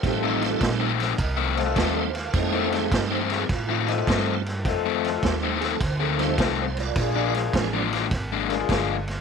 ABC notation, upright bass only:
X:1
M:4/4
L:1/8
Q:"Swing" 1/4=104
K:Fmix
V:1 name="Upright bass" clef=bass
A,,,2 B,,,2 C,,2 E,,2 | F,,2 G,,2 A,,2 G,,2 | F,,2 E,,2 D,,2 C,,2 | B,,,2 A,,,2 _A,,,2 G,,,2 |]